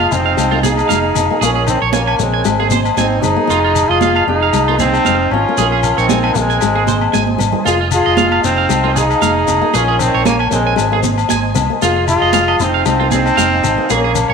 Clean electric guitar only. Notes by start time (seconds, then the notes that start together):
0.26 F5
0.51 F4
0.63 G#4
0.89 F5
1.41 G#4
1.55 G#4
1.82 C#5
1.93 G#5
2.07 G#5
2.34 G#5
2.60 G#4
2.72 C5
2.98 G#5
3.50 F4
3.64 F4
3.91 D#5
4.02 F5
4.16 F5
4.43 F5
4.68 F4
4.80 G#4
5.06 F5
5.58 G#4
5.72 G#4
5.98 C#5
6.10 G#5
6.24 G#5
6.50 G#5
6.75 G#4
6.88 C5
7.14 G#5
7.66 F4
7.81 F4
8.06 D#5
8.18 F5
8.32 F5
8.58 F5
8.84 F4
8.96 G#4
9.22 F5
9.74 G#4
9.88 G#4
10.15 C#5
10.26 G#5
10.40 G#5
10.67 G#5
10.93 G#4
11.04 muted clean electric guitar stroke
11.30 G#5
11.82 F4
11.96 F4
12.22 D#5
12.34 F5
12.48 D#5
12.74 F5
13.00 F4
13.12 G#4
13.37 F5
13.90 G#4
14.04 G#4
14.30 C#5